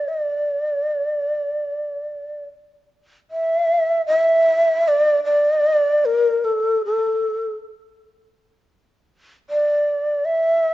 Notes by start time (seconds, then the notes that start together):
0.08 D5
3.31 E5
4.06 E5
4.88 D5
5.24 D5
6.05 A#4
6.44 A4
6.85 A4
9.50 D5
10.25 E5